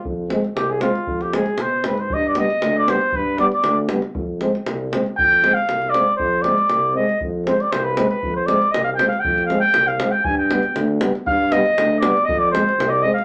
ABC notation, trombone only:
X:1
M:2/4
L:1/8
Q:1/4=118
K:none
V:1 name="Trombone"
z C z C | z C z C | z B, z B, | z B, z B, |
z C z C | z C z C | z C z C | z C z C |
z C z C | z C z C | z B, z B, | z B, z B, |
z C z C |]